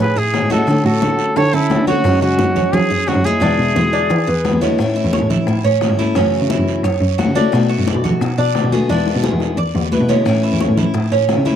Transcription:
Already playing: cuban tres C#5
0.00 cello A2, nylon-string guitar G#4, trumpet B4, long guiro
0.16 cello A2, nylon-string guitar E4, cuban tres G#4, trumpet G#4, high bongo, high conga
0.33 steel-string acoustic guitar E3 G#3 C#4 E4, high bongo, low bongo, high conga, short guiro
0.42 cello A2
0.50 steel-string acoustic guitar G#3 C#4 E4, cuban tres F#4, nylon-string guitar F#4, trumpet A4, high bongo, high conga, short guiro
0.67 steel-string acoustic guitar D3 A3 C#4 F#4, cello D3, high bongo, high conga, long guiro
0.84 cello A2, nylon-string guitar F#4, trumpet A4, high conga
1.01 cello D3, cuban tres F#4, high bongo, high conga, short guiro
1.19 high bongo, high conga, short guiro
1.35 cello D3, nylon-string guitar A4, trumpet C#5, muted steel-string acoustic guitar stroke, high bongo, high conga, long guiro
1.53 cello D3, nylon-string guitar C#4, trumpet E4, cuban tres A4, high conga
1.70 steel-string acoustic guitar D3 A3 C#4 F#4, high bongo, low bongo, high conga, short guiro
1.79 cello D3
1.87 steel-string acoustic guitar A3 C#4 F#4, nylon-string guitar C#4, trumpet F#4, cuban tres C#5, high bongo, high conga, short guiro
2.04 cello F#2, steel-string acoustic guitar F#3 G#3 C#4 G#4, high bongo, high conga, long guiro
2.21 cello C#3, nylon-string guitar C#4, trumpet F#4, cuban tres F#4, high conga
2.38 cello F#2, high bongo, high conga, short guiro
2.56 cuban tres C#5, high bongo, high conga, low conga, short guiro
2.73 cello F#3, nylon-string guitar C#4, trumpet G#4, muted steel-string acoustic guitar stroke, high bongo, high conga, low conga, long guiro
2.90 cello F#2, cuban tres G#4, high bongo, high conga
3.06 steel-string acoustic guitar F#3 G#3 C#4 G#4, nylon-string guitar C#4, trumpet F#4, high bongo, low bongo, high conga, short guiro
3.16 cello F#2
3.24 steel-string acoustic guitar G#3 C#4 G#4, nylon-string guitar E4, cuban tres G#4, trumpet G#4, high bongo, high conga, short guiro
3.40 cello E2, steel-string acoustic guitar B2 D3 G#3 B3 E4, cuban tres D4, high bongo, long guiro
3.58 cello B2, high conga
3.75 cello E2, cuban tres G#4, high bongo, high conga, short guiro
3.93 cuban tres D4, high bongo, high conga, short guiro
4.10 cello E3, muted steel-string acoustic guitar stroke, high bongo, high conga, long guiro
4.27 cello E2, cuban tres B4, high conga
4.44 steel-string acoustic guitar D3 G#3 B3 E4, high bongo, low bongo, high conga, short guiro
4.53 cello E2
4.61 steel-string acoustic guitar D3 G#3 B3 E4, cuban tres C#5, high bongo, high conga, short guiro
4.78 cello A2, steel-string acoustic guitar E3 A3 C#4 E4, high bongo, high conga, long guiro
4.96 cuban tres E4, high conga
5.04 cello E2
5.13 cuban tres C#5, high bongo, high conga, short guiro
5.21 cello A2
5.30 cuban tres E4, high bongo, high conga, low conga, short guiro
5.47 cello A2, muted steel-string acoustic guitar stroke, high bongo, high conga, long guiro
5.64 cello A2, cuban tres C#4, high bongo, high conga
5.81 steel-string acoustic guitar E3 A3 C#4 E4, high bongo, low bongo, high conga, short guiro
5.90 cello G#2
5.98 steel-string acoustic guitar A3 C#4 E4, cuban tres E4, high bongo, high conga, short guiro
6.15 cello F#2, steel-string acoustic guitar C#3 E3 A3 C#4 F#4, cuban tres C#4, high bongo, high conga, long guiro
6.33 high conga
6.41 cello C#3
6.50 cuban tres E4, high bongo, high conga, short guiro
6.58 cello F#2
6.67 high bongo, high conga, short guiro
6.84 cello F#2, cuban tres C#5, muted steel-string acoustic guitar stroke, high bongo, high conga, long guiro
7.01 cello F#2, high conga
7.18 steel-string acoustic guitar E3 A3 C#4 F#4, cuban tres F#4, high bongo, low bongo, high conga, short guiro
7.27 cello C#3
7.35 steel-string acoustic guitar E3 A3 C#4 F#4, cuban tres D4, high bongo, high conga, short guiro
7.52 steel-string acoustic guitar B2 D3 A3 B3 F#4, cello B2, high bongo, high conga, long guiro
7.69 cuban tres F#4, high conga
7.78 cello F#2
7.87 cuban tres D5, high bongo, high conga, short guiro
7.95 cello B2
8.04 cuban tres F#4, high bongo, high conga, low conga, short guiro
8.21 cello B2, muted steel-string acoustic guitar stroke, high bongo, high conga, long guiro
8.38 cello B2, cuban tres D4, high bongo, high conga
8.55 steel-string acoustic guitar D3 A3 B3 F#4, high bongo, low bongo, high conga, short guiro
8.64 cello B2
8.72 steel-string acoustic guitar D3 A3 B3 F#4, cuban tres G#4, high bongo, high conga, short guiro
8.89 cello E2, steel-string acoustic guitar B2 D3 G#3 B3 E4, cuban tres D4, high bongo, high conga, long guiro
9.06 high bongo, high conga
9.15 cello B2
9.23 cuban tres G#4, high bongo, high conga, short guiro
9.32 cello E2
9.40 high bongo, high conga, short guiro
9.57 cello E2, cuban tres D5, muted steel-string acoustic guitar stroke, high conga, long guiro
9.75 cello E2, low bongo, high conga
9.91 steel-string acoustic guitar D3 G#3 B3 E4, cuban tres B4, high conga, short guiro
10.01 cello B2
10.09 steel-string acoustic guitar D3 G#3 B3 E4, cuban tres C#4, low bongo, high conga, short guiro
10.25 cello A2, steel-string acoustic guitar E3 A3 C#4 E4, high bongo, high conga, long guiro
10.43 cuban tres E4, high conga
10.52 cello E2
10.60 cuban tres C#5, high bongo, high conga, short guiro
10.68 cello A2
10.77 cuban tres E4, high bongo, high conga, low conga, short guiro
10.94 cello A2, muted steel-string acoustic guitar stroke, high bongo, high conga, long guiro
11.11 cello A2, cuban tres C#4, high bongo, high conga
11.28 steel-string acoustic guitar E3 A3 C#4 E4, high bongo, low bongo, high conga, short guiro
11.37 cello C#3
11.45 steel-string acoustic guitar A3 C#4 E4, cuban tres E4, high bongo, high conga, short guiro

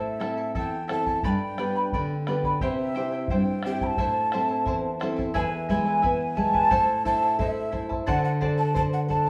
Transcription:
Already playing: nylon-string guitar A2, charango E4 A4 C5 E5 A5, quena E5
0.20 nylon-string guitar C4 E4 A4, charango E4 A4 E5 A5, bombo rim
0.37 charango E4 A4 A5
0.55 nylon-string guitar E2, charango E4 A4 E5 A5, quena G5, bombo low
0.88 nylon-string guitar C4 E4 A4, charango E4 A4 E5 A5, bombo rim
0.92 quena A5
1.06 charango E4 A4 A5, bombo low
1.23 nylon-string guitar G2, charango G4 B4 D5 G5 B5, quena G#5, bombo low
1.29 quena G5
1.58 nylon-string guitar B3 D4 G4, charango B4 D5 G5 B5, bombo rim
1.76 charango B4 D5 B5
1.92 nylon-string guitar D3, charango B4 D5 G5 B5, bombo low
2.27 nylon-string guitar B3 D4 G4, charango B4 D5 G5 B5, bombo rim
2.43 charango B4 D5 B5, bombo low
2.60 nylon-string guitar C3, charango E4 G4 C5 E5 G5, quena E5, bombo low
2.95 nylon-string guitar C4 E4 G4, charango E4 C5 E5 G5
3.12 charango E4 C5 G5
3.28 charango E4 C5 E5 G5, quena G5, bombo low
3.32 nylon-string guitar G2
3.63 nylon-string guitar C4 E4, charango E4 C5 E5 G5, quena G5, bombo rim
3.67 nylon-string guitar G4
3.81 charango E4 C5 G5, quena B5, bombo low
3.86 quena A5
3.97 nylon-string guitar A2, charango E4 A4 C5 E5 A5, bombo low
4.32 nylon-string guitar C4 E4 A4, charango E4 C5 E5 A5, bombo rim
4.48 charango E4 C5 A5
4.65 nylon-string guitar E2, charango E4 C5 E5 A5, bombo low
4.99 nylon-string guitar C4 E4 A4, charango E4 C5 E5 A5, bombo rim
5.16 charango E4 C5 A5, bombo low
5.34 nylon-string guitar E2, charango E4 G#4 B4 E5 G#5, quena A5, bombo low
5.41 quena G#5
5.69 nylon-string guitar G#3, charango E4 B4 E5 G#5, quena G#5, bombo low
5.86 charango E4 B4 G#5
6.02 nylon-string guitar B3, charango E4 B4 E5 G#5, bombo low
6.35 nylon-string guitar G#3, charango E4 B4 E5 G#5, quena A5, bombo low
6.54 charango E4 B4 G#5, bombo low
6.71 nylon-string guitar A2, charango E4 A4 C5 E5 A5, bombo low
7.05 nylon-string guitar E4, charango E4 C5 E5 A5, quena A5, bombo low
7.22 charango E4 C5 A5
7.39 charango E4 C5 E5 A5, nylon-string guitar A4, quena E5, bombo low
7.72 charango E4 C5 E5 A5, nylon-string guitar E4, bombo low
7.89 charango E4 C5 A5, bombo low
8.06 nylon-string guitar D3, charango F#4 A4 C5 D5 A5, quena F#5, bombo low
8.24 quena F#5
8.41 charango F#4 C5 D5 A5, nylon-string guitar A4, bombo low
8.58 charango F#4 D5 A5, quena A5
8.74 charango F#4 C5 D5 A5, nylon-string guitar C5, quena A5, bombo low
8.93 quena F#5
9.08 charango F#4 C5 D5 A5, nylon-string guitar A4, quena A5, bombo low
9.26 charango A5

